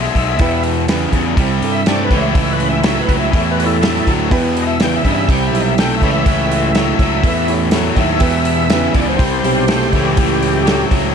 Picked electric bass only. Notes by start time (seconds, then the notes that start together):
0.15 B1
0.40 E2
1.12 E2
1.37 C2
1.62 G2
2.10 C#2
2.35 C#2
3.09 C#2
3.33 E2
4.07 D2
4.31 E2
5.04 G2
5.29 C2
5.52 B1
6.02 C#2
6.26 C#2
6.99 C#2
7.23 E2
7.96 D#2
8.20 E2
8.95 C#2
9.19 C2
9.44 B1
9.93 C#2
10.18 C#2
10.91 C#2